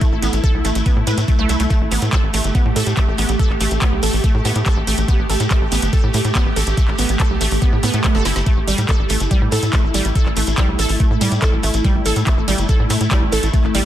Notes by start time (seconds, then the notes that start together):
Already playing: A3 E4
0.01 A3, kick, closed hi-hat, shekere
0.12 A1
0.22 A1 B3, closed hi-hat, shekere
0.33 A1, closed hi-hat, shekere
0.43 A4, kick, closed hi-hat, shekere
0.54 B1
0.65 A1 A3, closed hi-hat, shekere
0.75 A1, closed hi-hat, shekere
0.86 B3, kick, closed hi-hat, shekere
0.96 A2
1.07 A2 B4, closed hi-hat, shekere
1.18 A2, closed hi-hat, shekere
1.28 A3, kick, closed hi-hat, shekere
1.39 C2 A3
1.49 C2 E4, closed hi-hat, shekere
1.60 C2 A3, closed hi-hat, shekere
1.70 A3 G4, kick, closed hi-hat, shekere
1.81 A1
1.91 A1 B3, open hi-hat, shekere
2.02 A2, closed hi-hat, shekere
2.13 A4, kick, clap, closed hi-hat
2.23 A1
2.34 A1 A3, open hi-hat, shekere
2.44 G1, closed hi-hat, shekere
2.55 B3, kick, closed hi-hat, shekere
2.65 A2
2.76 A2 A4, open hi-hat, shekere
2.87 A2, closed hi-hat, shekere
2.97 A3, kick, clap, closed hi-hat, shekere
3.08 A1
3.18 A1 B3, open hi-hat, shekere
3.29 A1, closed hi-hat, shekere
3.39 A4, kick, closed hi-hat, shekere
3.50 A1, clap
3.60 A1 A3, open hi-hat, shekere
3.71 A1, closed hi-hat, shekere
3.82 B3, kick, clap, closed hi-hat
3.92 B1
4.03 A1 A4, open hi-hat, shekere
4.13 A1, open hi-hat, shekere
4.24 A3, kick, closed hi-hat, shekere
4.34 A2
4.45 A2 B3, open hi-hat, shekere
4.55 A2, closed hi-hat, shekere
4.66 A4, kick, clap, closed hi-hat, shekere
4.77 A1
4.87 A1 A3, open hi-hat, shekere
4.97 A1, closed hi-hat, shekere
5.08 B3, kick, closed hi-hat, shekere
5.19 A1
5.30 A1 A4, open hi-hat, shekere
5.40 A2, closed hi-hat, shekere
5.50 A3, kick, clap, closed hi-hat, shekere
5.61 A1
5.72 A1 B3, open hi-hat, shekere
5.82 G1, closed hi-hat, shekere
5.93 A4, kick, closed hi-hat, shekere
6.03 A2
6.13 A2 A3, open hi-hat, shekere
6.25 A2, closed hi-hat, shekere
6.35 B3, kick, clap, closed hi-hat, shekere
6.46 A1
6.56 A1 A4, open hi-hat, shekere
6.66 A1, closed hi-hat, shekere
6.77 A3, kick, closed hi-hat, shekere
6.88 A1, clap
6.98 A1 B3, open hi-hat, shekere
7.09 A1, closed hi-hat, shekere
7.20 A4, kick, clap, closed hi-hat, shekere
7.30 B1
7.41 A1 A3, open hi-hat, shekere
7.51 A1, open hi-hat, shekere
7.62 B3, kick, closed hi-hat, swell, shekere
7.73 A2
7.83 A2 B3, open hi-hat, shekere
7.94 A2 A3, closed hi-hat, shekere
8.04 B3, kick, clap, closed hi-hat
8.15 G1 A4, snare
8.25 G1 E4, snare, open hi-hat, shekere
8.36 G1, snare, closed hi-hat, shekere
8.46 A3 E4, kick, closed hi-hat, shekere
8.57 A1
8.68 A1 G3, open hi-hat, shekere
8.78 A2, closed hi-hat, shekere
8.89 A4, kick, clap, closed hi-hat, shekere
8.99 A1
9.09 A1 A3, open hi-hat, shekere
9.20 G1, closed hi-hat, shekere
9.31 G3, kick, closed hi-hat, shekere
9.42 A2
9.52 A2 A4, open hi-hat, shekere
9.63 A2, closed hi-hat, shekere
9.73 A3, kick, clap, closed hi-hat, shekere
9.84 A1
9.94 A1 G3, open hi-hat, shekere
10.05 A1, closed hi-hat, shekere
10.15 A4, kick, closed hi-hat, shekere
10.26 A1, clap
10.36 A1 A3, open hi-hat, shekere
10.47 A1, closed hi-hat, shekere
10.57 G3, kick, clap, closed hi-hat, shekere
10.68 B1
10.79 A1 A4, open hi-hat, shekere
10.89 A1, open hi-hat, shekere
11.00 A3, kick, closed hi-hat, shekere
11.11 A2
11.21 A2 G3, open hi-hat, shekere
11.32 A2, closed hi-hat, shekere
11.42 A4, kick, clap, closed hi-hat, shekere
11.53 A1
11.63 A1 A3, open hi-hat, shekere
11.74 A1, closed hi-hat, shekere
11.85 G3, kick, closed hi-hat, shekere
11.95 A1
12.05 A1 A4, open hi-hat, shekere
12.16 A2, closed hi-hat, shekere
12.27 A3, kick, clap, closed hi-hat
12.37 A1
12.48 A1 G3, open hi-hat, shekere
12.58 G1, closed hi-hat, shekere
12.69 A4, kick, closed hi-hat, shekere
12.80 A2
12.90 A2 A3, open hi-hat, shekere
13.01 A2, closed hi-hat, shekere
13.11 G3, kick, clap, closed hi-hat, shekere
13.22 A1
13.32 A1 A4, open hi-hat, shekere
13.43 A1, closed hi-hat, shekere
13.53 A3, kick, closed hi-hat, shekere
13.64 A1, clap
13.75 A1 G3, open hi-hat, shekere